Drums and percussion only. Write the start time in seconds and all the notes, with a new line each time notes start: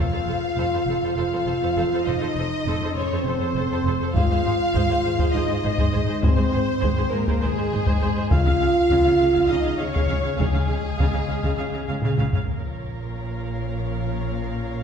4.16 taiko
4.75 taiko
5.19 taiko
5.78 taiko
6.23 taiko
6.83 taiko
7.27 taiko
7.86 taiko
8.31 taiko
8.91 taiko
9.36 taiko
9.96 taiko
10.40 taiko
10.99 taiko
11.43 taiko
12.02 taiko low-mid
12.18 taiko low-mid
12.33 taiko low
12.47 taiko